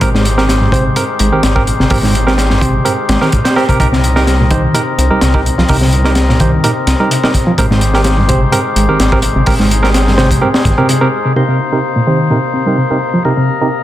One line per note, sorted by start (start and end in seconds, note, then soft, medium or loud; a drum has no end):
0.00 0.89 G#1 loud
0.00 0.07 G#2 medium
0.00 3.77 G#3 medium
0.00 0.08 C4 medium
0.00 11.32 D#4 medium
0.00 0.08 G4 medium
0.00 3.76 G4 medium
0.00 0.08 A#4 loud
0.00 3.76 C5 medium
0.00 kick loud
0.00 closed hi-hat medium
0.14 0.25 G#2 loud
0.14 snare medium
0.25 closed hi-hat medium
0.38 0.44 C4 medium
0.38 0.44 G4 medium
0.38 0.44 A#4 loud
0.38 snare soft
0.49 snare loud
0.49 closed hi-hat medium
0.61 0.66 G2 loud
0.72 0.95 C3 loud
0.72 0.83 C4 medium
0.72 0.83 G4 medium
0.72 0.83 C5 medium
0.72 kick medium
0.72 closed hi-hat medium
0.96 1.01 G2 medium
0.96 1.03 C4 medium
0.96 1.03 G4 medium
0.96 1.03 A#4 loud
0.96 closed hi-hat medium
1.19 1.32 G#1 loud
1.19 1.28 G#3 medium
1.19 closed hi-hat medium
1.32 1.41 G#1 soft
1.32 1.39 D#3 medium
1.32 1.42 C4 medium
1.32 1.42 G4 medium
1.32 1.42 A#4 medium
1.43 1.72 G#1 medium
1.43 1.48 G#2 medium
1.43 snare loud
1.43 closed hi-hat medium
1.56 1.62 C4 medium
1.56 1.62 G4 medium
1.56 1.62 A#4 loud
1.56 kick medium
1.67 closed hi-hat medium
1.80 1.87 G#1 loud
1.80 1.84 C3 loud
1.80 snare soft
1.90 2.78 G#1 loud
1.90 1.96 G#2 medium
1.90 1.97 C4 medium
1.90 1.97 G4 medium
1.90 1.97 A#4 medium
1.90 kick loud
1.90 open hi-hat medium
2.03 2.14 G#2 medium
2.03 snare soft
2.15 closed hi-hat medium
2.27 2.33 C4 medium
2.27 2.33 G4 medium
2.27 2.33 A#4 loud
2.27 snare soft
2.38 snare loud
2.38 closed hi-hat medium
2.50 2.55 G2 loud
2.50 snare medium
2.61 2.85 C3 medium
2.61 2.72 C4 medium
2.61 2.72 G4 medium
2.61 2.72 C5 medium
2.61 kick medium
2.61 closed hi-hat medium
2.85 2.90 G2 medium
2.85 2.92 C4 medium
2.85 2.92 G4 medium
2.85 2.92 A#4 medium
2.85 closed hi-hat medium
3.09 3.17 G#1 loud
3.09 3.17 G#3 medium
3.09 snare medium
3.09 closed hi-hat medium
3.21 3.29 D#3 medium
3.21 3.27 C4 medium
3.21 3.27 G4 medium
3.21 3.27 A#4 loud
3.21 snare medium
3.32 3.38 G#2 medium
3.32 kick medium
3.32 closed hi-hat medium
3.45 3.53 C4 medium
3.45 3.53 G4 medium
3.45 3.53 C5 medium
3.45 snare loud
3.45 closed hi-hat medium
3.56 3.63 C4 loud
3.56 3.63 G4 medium
3.56 3.63 A#4 loud
3.56 snare medium
3.69 3.73 C3 loud
3.69 3.77 C4 medium
3.69 3.77 G4 medium
3.69 3.77 A#4 loud
3.69 kick medium
3.69 closed hi-hat medium
3.80 4.67 C2 loud
3.80 3.85 C3 medium
3.80 7.54 C3 medium
3.80 7.54 C4 medium
3.80 3.86 D#4 medium
3.80 3.86 G4 medium
3.80 3.86 A#4 loud
3.80 7.54 A#4 medium
3.80 kick loud
3.80 closed hi-hat medium
3.92 4.03 C3 loud
3.92 snare soft
4.04 closed hi-hat medium
4.16 4.22 D#4 medium
4.16 4.22 G4 medium
4.16 4.22 A#4 loud
4.16 snare soft
4.27 snare loud
4.27 closed hi-hat medium
4.40 4.44 A#2 loud
4.51 4.73 D#3 loud
4.51 4.61 D#4 medium
4.51 4.61 G4 medium
4.51 4.61 C5 medium
4.51 kick loud
4.51 closed hi-hat medium
4.74 4.79 A#2 medium
4.74 4.81 D#4 medium
4.74 4.81 G4 medium
4.74 4.81 A#4 medium
4.74 closed hi-hat medium
4.98 5.10 C2 loud
4.98 5.06 C4 medium
4.98 closed hi-hat medium
5.10 5.20 C2 soft
5.10 5.17 G3 medium
5.10 5.20 D#4 medium
5.10 5.20 G4 medium
5.10 5.20 A#4 medium
5.21 5.50 C2 medium
5.21 5.27 C3 medium
5.21 snare loud
5.21 closed hi-hat medium
5.34 5.40 D#4 medium
5.34 5.40 G4 medium
5.34 5.40 A#4 loud
5.34 kick medium
5.46 closed hi-hat medium
5.58 5.65 C2 loud
5.58 5.62 F3 loud
5.58 snare soft
5.69 6.57 C2 loud
5.69 5.74 C3 medium
5.69 5.76 D#4 medium
5.69 5.76 G4 medium
5.69 5.76 A#4 medium
5.69 kick loud
5.69 open hi-hat medium
5.81 5.92 C3 loud
5.81 snare soft
5.93 closed hi-hat medium
6.04 6.11 D#4 medium
6.04 6.11 G4 medium
6.04 6.11 A#4 loud
6.04 snare soft
6.15 snare loud
6.15 closed hi-hat medium
6.29 6.33 A#2 loud
6.29 snare medium
6.40 6.63 D#3 medium
6.40 6.50 D#4 medium
6.40 6.50 G4 medium
6.40 6.50 C5 medium
6.40 kick loud
6.40 closed hi-hat medium
6.64 6.68 A#2 medium
6.64 6.70 D#4 medium
6.64 6.70 G4 medium
6.64 6.70 A#4 medium
6.64 closed hi-hat medium
6.87 6.95 C2 loud
6.87 6.95 C4 medium
6.87 snare soft
6.87 closed hi-hat medium
7.00 7.07 G3 medium
7.00 7.09 D#4 medium
7.00 7.09 G4 medium
7.00 7.09 A#4 medium
7.11 7.15 C3 medium
7.11 closed hi-hat medium
7.24 7.29 D#4 medium
7.24 7.29 G4 medium
7.24 7.29 A#4 loud
7.24 snare loud
7.34 kick medium
7.34 closed hi-hat medium
7.47 7.51 F3 loud
7.58 8.46 G#1 loud
7.58 7.63 G#2 medium
7.58 11.32 G#3 medium
7.58 7.65 C4 medium
7.58 7.65 G4 medium
7.58 9.46 G4 medium
7.58 7.65 A#4 loud
7.58 11.33 C5 medium
7.58 kick loud
7.58 closed hi-hat medium
7.71 7.81 G#2 loud
7.71 snare medium
7.81 closed hi-hat medium
7.94 8.00 C4 medium
7.94 8.00 G4 medium
7.94 8.00 A#4 loud
7.94 snare medium
8.04 snare loud
8.04 closed hi-hat medium
8.18 8.22 G2 loud
8.29 8.51 C3 loud
8.29 8.39 C4 medium
8.29 8.39 G4 medium
8.29 8.39 C5 medium
8.29 kick medium
8.29 closed hi-hat medium
8.52 8.57 G2 medium
8.52 8.59 C4 medium
8.52 8.59 G4 medium
8.52 8.59 A#4 loud
8.52 closed hi-hat medium
8.76 8.88 G#1 loud
8.76 8.84 G#3 medium
8.76 closed hi-hat medium
8.88 8.97 G#1 soft
8.88 8.95 D#3 medium
8.88 8.98 C4 medium
8.88 8.98 G4 medium
8.88 8.98 A#4 medium
8.99 9.28 G#1 medium
8.99 9.04 G#2 medium
8.99 snare loud
8.99 closed hi-hat medium
9.12 9.18 C4 medium
9.12 9.18 G4 medium
9.12 9.18 A#4 loud
9.12 kick loud
9.22 closed hi-hat medium
9.35 9.42 G#1 medium
9.35 9.40 C3 loud
9.46 10.35 G#1 loud
9.46 9.52 G#2 medium
9.46 9.53 C4 medium
9.46 9.53 G4 medium
9.46 11.34 G#4 medium
9.46 9.53 A#4 loud
9.46 kick loud
9.46 open hi-hat medium
9.60 9.70 G#2 loud
9.60 snare soft
9.71 closed hi-hat medium
9.83 9.89 C4 medium
9.83 9.89 G4 medium
9.83 9.89 A#4 loud
9.83 snare soft
9.94 snare loud
9.94 closed hi-hat medium
10.07 10.11 G2 loud
10.07 snare soft
10.18 10.41 C3 loud
10.18 10.28 C4 medium
10.18 10.28 G4 medium
10.18 10.28 C5 medium
10.18 snare loud
10.31 kick medium
10.31 closed hi-hat medium
10.41 10.46 G2 medium
10.41 10.48 C4 medium
10.41 10.48 G4 medium
10.41 10.48 A#4 medium
10.54 snare loud
10.65 10.73 G#1 loud
10.65 10.70 G2 medium
10.65 kick medium
10.65 closed hi-hat medium
10.78 10.85 C3 medium
10.78 10.87 C4 medium
10.78 10.87 G4 medium
10.78 10.87 A#4 medium
10.89 10.97 C3 medium
10.89 closed hi-hat medium
11.01 11.05 C3 medium
11.01 11.07 C4 medium
11.01 11.07 G4 medium
11.01 11.07 A#4 loud
11.25 11.32 C3 medium
11.36 11.41 C3 medium
11.36 11.42 C3 medium
11.36 13.83 C3 medium
11.36 13.83 A#3 medium
11.36 11.42 D#4 medium
11.36 13.83 D#4 medium
11.36 11.42 G4 medium
11.36 11.42 A#4 medium
11.36 13.23 C5 medium
11.48 11.59 C3 medium
11.72 11.78 C3 medium
11.72 11.78 D#4 medium
11.72 11.78 G4 medium
11.72 11.78 A#4 medium
11.96 12.00 A#2 medium
12.07 12.17 C3 medium
12.07 12.29 D#3 medium
12.07 12.17 D#4 medium
12.07 12.17 G4 medium
12.07 12.17 C5 medium
12.30 12.35 A#2 medium
12.30 12.37 C3 medium
12.30 12.37 D#4 medium
12.30 12.37 G4 medium
12.30 12.37 A#4 medium
12.54 12.61 C4 medium
12.66 12.76 C3 medium
12.66 12.73 G3 medium
12.66 12.76 D#4 medium
12.66 12.76 G4 medium
12.66 12.76 A#4 medium
12.77 12.82 C3 medium
12.90 12.96 C3 medium
12.90 12.96 D#4 medium
12.90 12.96 G4 medium
12.90 12.96 A#4 medium
13.14 13.18 F3 medium
13.25 13.30 C3 medium
13.25 13.31 C3 medium
13.25 13.31 D#4 medium
13.25 13.31 G4 medium
13.25 13.83 A#4 medium
13.25 13.31 A#4 medium
13.37 13.48 C3 medium
13.61 13.67 C3 medium
13.61 13.67 D#4 medium
13.61 13.67 G4 medium
13.61 13.67 A#4 medium